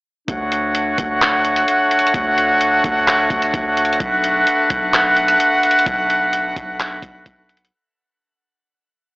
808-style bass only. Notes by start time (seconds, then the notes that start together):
0.28 D2
0.98 D2
2.14 D2
2.84 D2
3.30 D2
3.54 D2
4.00 B1
4.70 B1
5.86 B1
6.56 B1
7.02 B1
7.26 B1